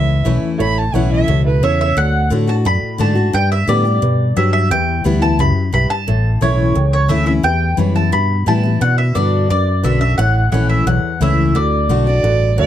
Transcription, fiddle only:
0.00 0.26 E5 medium
0.61 0.80 B5 medium
0.78 0.96 A5 medium
0.95 1.11 F#5 medium
1.12 1.45 E5 loud
1.46 1.65 B4 medium
1.63 1.88 C#5 loud
12.07 12.56 D5 loud
12.58 12.66 D5 loud

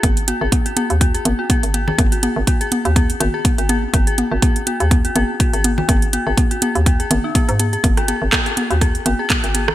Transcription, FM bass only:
0.03 0.33 G#1 medium
0.41 0.48 G#1 medium
0.90 1.18 D#2 medium
1.25 1.33 G#1 loud
1.63 1.92 G#1 medium
1.99 2.28 G#1 loud
2.36 2.43 G#1 medium
2.85 3.14 D#2 medium
3.20 3.29 G#1 loud
3.58 3.87 G#1 medium
3.94 4.23 G#1 loud
4.32 4.38 G#1 medium
4.80 5.09 D#2 medium
5.16 5.24 G#1 loud
5.54 5.82 G#1 medium
5.89 6.18 G#1 loud
6.27 6.33 G#1 medium
6.75 7.04 D#2 medium
7.11 7.19 G#1 loud
7.49 7.77 G#2 medium
7.84 8.13 G#1 medium
8.22 8.28 G#1 medium
8.71 8.99 D#2 medium
9.06 9.14 G#1 loud
9.44 9.72 G#1 medium

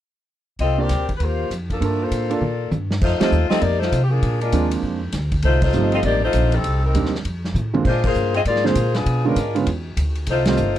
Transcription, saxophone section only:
0.61 0.78 C4 medium
0.61 0.78 F4 medium
0.61 0.78 A4 medium
0.61 0.78 D#5 medium
0.80 1.10 C4 medium
0.80 1.10 G4 medium
0.80 1.10 A#4 medium
0.80 1.10 D5 medium
1.16 1.21 B4 medium
1.23 1.52 A#3 medium
1.23 1.52 F4 medium
1.23 1.52 G4 medium
1.23 1.52 C5 medium
1.72 1.81 F3 medium
1.72 1.81 A#3 medium
1.72 1.81 D4 medium
1.72 1.81 A4 medium
1.83 2.01 F3 medium
1.83 2.01 A3 medium
1.83 2.01 D4 medium
1.83 2.01 A#4 medium
2.03 2.32 A#3 medium
2.03 2.31 F4 medium
2.03 2.32 A4 medium
2.03 2.31 C5 medium
2.33 2.73 A#3 medium
2.33 2.73 F4 medium
2.33 2.73 A4 medium
2.33 2.73 D5 medium
3.03 3.20 A3 medium
3.03 3.20 D#4 medium
3.03 3.20 F4 medium
3.03 3.20 C5 medium
3.21 3.49 A3 medium
3.21 3.49 D#4 medium
3.21 3.48 F4 medium
3.21 3.49 C5 medium
3.49 3.61 C4 medium
3.49 3.60 F4 medium
3.49 3.61 A4 medium
3.49 3.61 D#5 loud
3.61 3.81 A#3 medium
3.61 3.78 D#4 medium
3.61 3.81 G4 medium
3.61 3.81 D5 loud
3.79 4.02 A3 medium
3.79 4.02 D#4 medium
3.79 4.02 F4 medium
3.79 4.02 C5 loud
4.04 4.12 G4 medium
4.10 4.41 F3 medium
4.10 4.41 A#3 medium
4.10 4.40 D4 medium
4.10 4.41 G#4 medium
4.41 4.70 G#3 medium
4.41 4.69 D4 medium
4.41 4.70 F4 medium
4.41 4.70 A#4 medium
5.45 5.62 A3 medium
5.45 5.62 D#4 medium
5.45 5.62 F4 medium
5.45 5.62 C5 loud
5.63 5.91 A3 medium
5.63 5.91 D#4 medium
5.63 5.91 F4 medium
5.63 5.91 C5 medium
5.94 5.99 C4 medium
5.94 5.99 F4 medium
5.94 5.99 A4 medium
5.94 5.99 D#5 medium
6.05 6.23 A#3 medium
6.05 6.22 D#4 medium
6.05 6.22 G4 medium
6.05 6.22 D5 loud
6.24 6.52 A3 medium
6.24 6.52 D#4 medium
6.24 6.51 F4 medium
6.24 6.51 C5 medium
6.54 6.84 G3 medium
6.54 6.84 C4 medium
6.54 6.84 D#4 medium
6.54 6.84 A4 medium
6.86 7.13 G3 medium
6.86 7.13 C4 medium
6.86 7.13 D#4 medium
6.86 7.13 A#4 medium
7.87 8.04 G#3 medium
7.87 8.04 D4 medium
7.87 8.04 F4 medium
7.87 8.04 C5 loud
8.05 8.33 A#3 medium
8.05 8.33 F4 medium
8.05 8.33 G#4 medium
8.05 8.33 C5 medium
8.36 8.41 C4 medium
8.36 8.41 F4 medium
8.36 8.41 G#4 medium
8.36 8.41 D#5 loud
8.47 8.64 A#3 medium
8.47 8.64 F4 medium
8.47 8.64 G#4 medium
8.47 8.64 D5 loud
8.66 8.96 A#3 medium
8.66 8.96 F4 medium
8.66 8.96 G#4 medium
8.66 8.96 C5 loud
8.96 9.26 F3 medium
8.96 9.26 B3 medium
8.96 9.25 D4 medium
8.96 9.26 G#4 medium
9.26 9.56 G#3 medium
9.26 9.56 D4 medium
9.26 9.56 F4 medium
9.26 9.56 A#4 medium
10.30 10.47 A3 medium
10.30 10.47 D#4 medium
10.30 10.47 F4 medium
10.30 10.47 C5 medium
10.48 10.75 A3 medium
10.48 10.76 D#4 medium
10.48 10.76 F4 medium
10.48 10.76 C5 medium

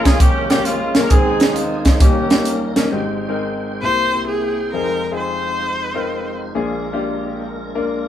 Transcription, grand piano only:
0.00 1.08 A#1 medium
0.00 1.07 A#2 medium
0.50 0.77 A#3 medium
0.50 0.78 C#4 medium
0.50 0.78 F4 medium
0.50 0.78 G4 medium
0.96 1.06 A#3 medium
0.96 1.06 C#4 medium
0.96 1.06 F4 medium
0.96 1.07 A#4 medium
1.11 1.97 D#2 medium
1.11 1.97 D#3 medium
1.11 1.79 G#3 medium
1.11 1.79 C4 medium
1.11 1.79 D#4 medium
1.11 1.80 G#4 medium
2.01 2.88 D#2 medium
2.01 2.88 D#3 medium
2.01 2.25 A#3 medium
2.01 2.25 C#4 medium
2.01 2.25 D#4 medium
2.01 2.25 G4 medium
2.31 2.58 A#3 medium
2.31 2.58 C#4 medium
2.31 2.58 D#4 medium
2.31 2.58 G4 medium
2.76 2.87 A#3 medium
2.76 2.87 C#4 medium
2.76 2.87 D#4 medium
2.76 2.87 A#4 medium
2.92 3.79 G#1 medium
2.92 3.79 G#2 medium
2.92 3.22 G#3 medium
2.92 3.22 C4 medium
2.92 3.22 D#4 medium
2.92 3.22 G4 medium
3.28 3.81 G#3 medium
3.28 3.81 C4 medium
3.28 3.81 D#4 medium
3.28 3.81 A#4 medium
3.82 4.69 C2 medium
3.82 4.69 C3 medium
3.82 4.06 A#3 medium
3.82 4.06 C4 medium
3.82 4.07 E4 medium
3.82 4.07 G4 medium
4.12 4.59 A#3 medium
4.12 4.59 C4 medium
4.12 4.59 E4 medium
4.12 4.59 G4 medium
4.73 6.51 F1 soft
4.73 6.51 F2 medium
4.73 5.04 C4 medium
4.73 5.04 D#4 medium
4.73 5.04 F4 medium
4.73 5.04 G#4 medium
5.11 5.63 C4 medium
5.11 5.63 D#4 medium
5.11 5.63 F4 medium
5.11 5.63 G#4 medium
5.94 6.41 C4 medium
5.94 6.41 D#4 medium
5.94 6.41 F4 medium
5.94 6.41 A#4 medium
6.55 8.08 A#1 medium
6.55 8.08 A#2 medium
6.55 6.85 A#3 medium
6.55 6.85 D4 medium
6.55 6.85 F4 medium
6.55 6.86 G#4 medium
6.93 7.45 A#3 medium
6.93 7.45 D4 medium
6.93 7.45 F4 medium
6.93 7.45 G4 medium
7.75 8.08 A#3 medium
7.75 8.08 D4 medium
7.75 8.08 F4 medium
7.75 8.08 A#4 medium

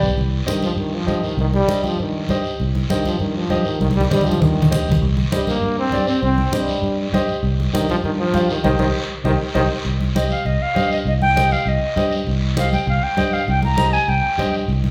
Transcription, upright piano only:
0.46 0.68 G4 medium
0.46 0.68 C5 medium
0.46 0.68 D#5 medium
1.06 1.28 G4 medium
1.06 1.29 C5 medium
1.06 1.29 D#5 medium
1.68 1.90 G4 medium
1.68 1.90 C5 medium
1.68 1.90 D#5 medium
2.30 2.51 G4 medium
2.30 2.51 C5 medium
2.30 2.51 D#5 medium
2.90 3.11 G4 medium
2.90 3.11 C5 medium
2.90 3.11 D#5 medium
3.50 3.71 G4 medium
3.50 3.72 C5 medium
3.50 3.72 D#5 medium
4.10 4.32 G4 medium
4.10 4.32 C5 medium
4.10 4.32 D#5 medium
4.71 4.92 G4 medium
4.71 4.92 C5 medium
4.71 4.93 D#5 medium
5.32 5.53 G4 medium
5.32 5.53 C5 medium
5.32 5.53 D#5 medium
5.92 6.14 G4 medium
5.92 6.14 C5 medium
5.92 6.14 D5 medium
6.53 6.74 G4 medium
6.53 6.74 C5 medium
6.53 6.74 D#5 medium
7.13 7.34 G4 medium
7.13 7.35 C5 medium
7.13 7.35 D#5 medium
7.73 7.95 G4 medium
7.73 7.95 C5 medium
7.73 7.95 D#5 medium
8.34 8.55 G4 medium
8.34 8.55 C5 medium
8.34 8.55 F5 medium
8.64 8.74 G4 medium
8.64 8.74 C5 medium
8.64 8.74 D#5 medium
8.80 8.89 G4 medium
8.80 8.90 C5 medium
8.80 8.90 D#5 medium
9.25 9.35 G4 medium
9.25 9.35 C5 medium
9.25 9.34 D#5 medium
9.55 9.65 G4 medium
9.55 9.65 C5 medium
9.55 9.64 D#5 medium
10.15 10.37 G4 medium
10.15 10.37 C5 medium
10.15 10.37 D#5 medium
10.75 10.96 G4 medium
10.75 10.97 C5 medium
10.75 10.97 D#5 medium
11.35 11.57 G4 medium
11.35 11.57 C5 medium
11.35 11.57 D#5 medium
11.96 12.18 G4 medium
11.96 12.18 C5 medium
11.96 12.18 D#5 medium
12.56 12.78 G4 medium
12.56 12.78 C5 medium
12.56 12.78 D#5 medium
13.17 13.39 G4 medium
13.17 13.39 C5 medium
13.17 13.39 D#5 medium
13.77 13.99 G4 medium
13.77 13.99 C5 medium
13.77 13.99 D#5 medium
14.38 14.60 G4 medium
14.38 14.60 C5 medium
14.38 14.60 D#5 medium

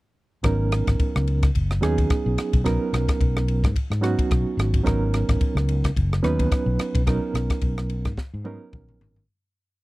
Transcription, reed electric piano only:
0.43 1.48 F#3 medium
0.43 1.48 B3 medium
0.43 1.48 C#4 medium
0.43 1.48 D#4 medium
0.43 1.49 A#4 medium
1.81 2.60 F#3 medium
1.81 2.60 B3 medium
1.81 2.60 C#4 medium
1.81 2.60 D#4 medium
1.81 2.61 G#4 medium
2.64 3.69 F#3 medium
2.64 3.69 B3 medium
2.64 3.69 C#4 medium
2.64 3.69 D#4 medium
2.64 3.69 A#4 medium
4.01 4.80 F#3 medium
4.01 4.80 B3 medium
4.01 4.80 C#4 medium
4.01 4.81 D#4 medium
4.01 4.81 F#4 medium
4.83 5.89 F#3 medium
4.83 5.89 B3 medium
4.83 5.89 C#4 medium
4.83 5.89 D#4 medium
4.83 5.90 A#4 medium
6.22 7.01 F#3 medium
6.22 7.01 B3 medium
6.22 7.01 C#4 medium
6.22 7.02 D#4 medium
6.22 7.02 B4 medium
7.07 8.11 F#3 medium
7.07 8.11 B3 medium
7.07 8.11 C#4 medium
7.07 8.11 D#4 medium
7.07 8.11 A#4 medium
8.45 9.23 F#3 medium
8.45 9.23 B3 medium
8.45 9.24 C#4 medium
8.45 9.24 D#4 medium
8.45 9.24 A#4 medium

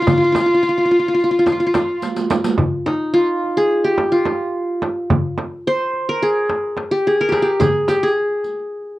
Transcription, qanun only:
0.02 0.10 F4 medium
0.10 0.17 F4 soft
0.18 0.24 F4 soft
0.24 0.32 F4 soft
0.32 0.40 F4 soft
0.40 0.46 F4 soft
0.46 0.54 F4 soft
0.54 0.62 F4 soft
0.63 0.69 F4 medium
0.69 0.77 F4 soft
0.78 0.85 F4 soft
0.85 0.91 F4 soft
0.91 0.99 F4 medium
0.99 1.08 F4 soft
1.08 1.14 F4 medium
1.14 1.23 F4 medium
1.24 1.31 F4 medium
1.31 1.39 F4 medium
1.39 1.46 F4 medium
1.46 1.52 F4 soft
1.52 1.60 F4 soft
1.60 1.66 F4 medium
1.67 1.74 F4 medium
1.75 3.09 F4 medium
2.86 4.30 D#4 medium
3.14 4.11 F4 medium
3.57 3.90 G#4 medium
3.84 5.10 G4 medium
4.12 5.46 F4 medium
5.67 6.72 C5 loud
6.09 7.20 A#4 medium
6.22 6.97 G#4 medium
6.91 7.13 G4 medium
7.07 7.32 G#4 medium
7.21 8.34 A#4 medium
7.29 7.38 G4 medium
7.29 7.48 G#4 medium
7.42 7.66 G4 medium
7.60 7.94 G#4 medium
7.88 8.09 G4 medium
8.03 8.99 G#4 medium

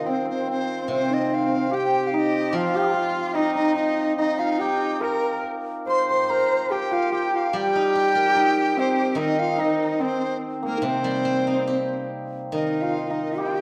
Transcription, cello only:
0.06 0.89 C4 medium
0.89 1.75 C4 medium
1.73 2.56 G4 medium
2.55 3.38 F4 medium
3.36 4.18 D#4 medium
4.19 5.06 D#4 medium
5.04 5.45 A#4 medium
5.89 6.75 C5 medium
6.73 7.52 G4 medium
7.53 9.20 G4 medium
9.18 10.02 D#4 medium
10.01 10.36 C4 medium
10.66 10.86 A#3 medium
10.85 12.12 C4 medium
12.56 13.42 D#4 medium
13.40 13.61 G4 medium

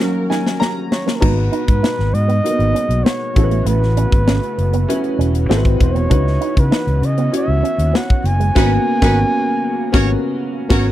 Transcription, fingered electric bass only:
1.22 1.48 G#1 loud
1.68 1.81 G#2 medium
1.99 2.12 G#1 medium
2.14 2.40 G#2 medium
2.59 2.72 G#1 medium
2.89 3.02 B1 medium
3.36 3.62 A1 medium
3.65 4.04 A1 loud
4.12 4.38 G#1 medium
4.58 4.84 F#1 medium
5.19 5.45 E1 medium
5.49 5.75 G#1 loud
5.80 6.06 E1 loud
6.11 6.37 C#2 loud
6.57 6.70 C#3 medium
6.87 7.00 C#2 medium
7.02 7.28 C#3 loud
7.48 7.61 C#2 medium
7.78 7.92 D#2 medium
8.24 8.50 F#1 medium
8.56 8.77 G#1 loud
9.02 9.23 G#1 loud
9.93 10.14 G#1 loud
10.70 10.91 G#1 medium

